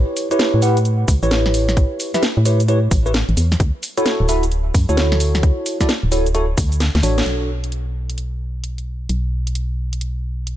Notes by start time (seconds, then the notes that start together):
Already playing: E4 G4 B4 C#5
0.17 open hi-hat, cabasa
0.31 E4 G4 B4 C#5, closed hi-hat, cabasa
0.39 snare, closed hi-hat, cabasa
0.54 A2
0.62 E4 G4 B4 F#5, open hi-hat, cabasa
0.77 closed hi-hat, cabasa
0.85 closed hi-hat, cabasa
1.08 C#2, kick, open hi-hat, cabasa
1.23 A1 E4 G4 B4 C#5, cabasa
1.31 snare, closed hi-hat, cabasa
1.46 snare, closed hi-hat
1.54 open hi-hat, cabasa
1.69 snare, cabasa
1.77 kick, closed hi-hat, cabasa
2.00 open hi-hat, cabasa
2.14 E4 G4 B4 E5, snare, closed hi-hat, cabasa
2.23 snare, closed hi-hat, cabasa
2.37 A2
2.45 E4 G4 B4 C#5, open hi-hat, cabasa
2.60 closed hi-hat, cabasa
2.68 E4 G4 B4 C#5, closed hi-hat, cabasa
2.91 A1, kick, open hi-hat, cabasa
3.06 E4 G4 B4 C#5, cabasa
3.14 snare, closed hi-hat, cabasa
3.29 A1, closed hi-hat
3.37 E2, open hi-hat, cabasa
3.52 snare, cabasa
3.60 D2, kick, closed hi-hat, cabasa
3.83 open hi-hat, cabasa
3.97 E4 F#4 A4 C#5, closed hi-hat, cabasa
4.06 snare, closed hi-hat, cabasa
4.20 D1
4.29 E4 F#4 A4 E5, open hi-hat, cabasa
4.43 closed hi-hat, cabasa
4.52 closed hi-hat, cabasa
4.74 F#2, kick, open hi-hat, cabasa
4.89 D2 E4 F#4 A4 C#5, cabasa
4.97 snare, closed hi-hat, cabasa
5.12 snare, closed hi-hat
5.20 open hi-hat, cabasa
5.35 snare, cabasa
5.43 kick, closed hi-hat, cabasa
5.66 open hi-hat, cabasa
5.81 E4 F#4 A4 D5, kick, snare, closed hi-hat, cabasa
5.89 snare, closed hi-hat, cabasa
6.03 D1
6.12 E4 F#4 A4 C#5, open hi-hat, cabasa
6.26 closed hi-hat, cabasa
6.35 E4 F#4 A4 C#5, closed hi-hat, cabasa
6.58 D2, kick, open hi-hat, cabasa
6.72 closed hi-hat, cabasa
6.80 snare, closed hi-hat, cabasa
6.95 D2, snare, closed hi-hat
7.03 A1 D4 F#4 A4 C#5, open hi-hat, cabasa
7.18 snare, cabasa
7.26 B1, closed hi-hat
7.64 closed hi-hat
7.72 closed hi-hat
8.10 closed hi-hat
8.18 closed hi-hat
8.64 closed hi-hat
8.78 closed hi-hat
9.09 B1, closed hi-hat
9.47 closed hi-hat
9.55 closed hi-hat
9.93 closed hi-hat
10.01 closed hi-hat
10.47 closed hi-hat